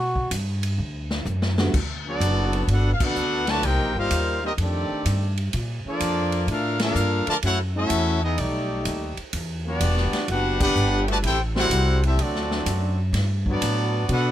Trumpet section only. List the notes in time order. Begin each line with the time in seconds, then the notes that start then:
2.08 B3 F#4 A4 D5
2.71 D4 A4 B4 F#5
2.93 F5
3.03 D4 A4 B4 F#5
3.50 F#4 B4 D5 A5
3.65 D#4 A#4 C5 G5
3.98 D#4 A#4 C5 F5
4.45 C4 G4 A#4 D#5
4.61 C4 G4 A4 D5
5.88 A#3 F4 A4 D5
6.50 D4 A4 A#4 F5
6.82 D4 A4 A#4 F5
7.29 F4 A#4 D5 A5
7.45 E4 A4 C#5 F#5
7.77 C#4 F#4 A4 E5
8.24 B3 E4 G#4 D#5
8.39 A3 D#4 G4 D5
9.67 B3 F#4 G4 D5
10.31 D4 G4 B4 F#5
10.62 D4 G4 B4 F#5
11.10 F#4 B4 D5 A5
11.26 E4 A4 C5 G5
11.57 E4 A4 C5 F#5
12.06 C4 G4 A4 E5
12.22 C4 F#4 A4 D5
13.50 B3 F#4 A4 D5
14.11 D4 A4 B4 F#5